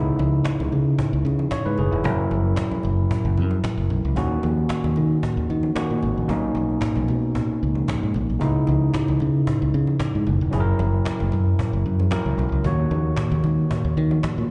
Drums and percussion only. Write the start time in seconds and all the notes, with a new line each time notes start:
0.18 cajon slap, muted conga, high conga
0.32 cajon slap
0.45 cajon bass, cajon slap
0.60 high conga, low conga
0.72 cajon slap, low conga
0.86 cajon slap
0.99 cajon bass, muted conga
1.25 cajon slap, muted conga
1.39 cajon slap, high conga
1.51 cajon bass, cajon slap, high conga
1.78 muted conga, low conga
1.91 cajon slap
2.04 cajon bass, muted conga
2.30 cajon slap, high conga
2.44 cajon slap
2.56 cajon bass, cajon slap, muted conga
2.71 high conga, low conga
2.83 cajon slap, low conga
2.99 cajon slap
3.11 cajon bass
3.38 cajon slap, muted conga
3.51 cajon slap, high conga
3.64 cajon bass, cajon slap, high conga
3.90 low conga
4.04 cajon slap
4.16 cajon bass, muted conga
4.43 cajon slap, high conga
4.57 cajon slap
4.69 cajon bass, cajon slap, muted conga
4.84 high conga, low conga
4.96 cajon slap, muted conga, low conga
5.11 cajon slap
5.23 cajon bass, muted conga
5.50 cajon slap, muted conga
5.63 cajon slap, high conga
5.76 cajon bass, cajon slap, muted conga, high conga
6.03 muted conga, low conga
6.16 cajon slap
6.29 cajon bass
6.55 cajon slap, high conga
6.69 cajon slap
6.81 cajon bass, cajon slap
6.96 cajon slap, high conga, low conga
7.08 cajon slap, muted conga, low conga
7.23 cajon slap
7.35 cajon bass
7.50 cajon slap
7.62 cajon slap
7.75 cajon slap, high conga
7.88 cajon bass, cajon slap, muted conga, high conga
8.14 muted conga, low conga
8.29 cajon slap
8.41 cajon bass, muted conga
8.67 cajon slap, muted conga, high conga
8.82 cajon slap
8.94 cajon bass, cajon slap, muted conga
9.08 high conga, low conga
9.20 cajon slap, muted conga, low conga
9.35 cajon slap
9.47 cajon bass, muted conga
9.74 cajon slap
9.87 cajon slap, high conga
10.00 cajon bass, cajon slap, high conga
10.27 low conga
10.40 cajon slap
10.53 cajon bass
10.79 cajon slap, muted conga, high conga
10.93 cajon slap
11.05 cajon bass, cajon slap, muted conga
11.20 high conga, low conga
11.32 cajon slap, muted conga, low conga
11.47 cajon slap
11.59 cajon bass, muted conga
11.85 cajon slap
12.00 cajon slap, high conga
12.11 cajon bass, cajon slap, muted conga, high conga
12.39 muted conga, low conga
12.52 cajon slap
12.64 cajon bass, muted conga
12.90 cajon slap, high conga
13.05 cajon slap
13.16 cajon bass, cajon slap
13.32 high conga, low conga
13.44 cajon slap, muted conga, low conga
13.58 cajon slap
13.71 cajon bass, muted conga
13.97 cajon slap, muted conga
14.11 cajon slap, high conga
14.23 cajon bass, cajon slap, muted conga, high conga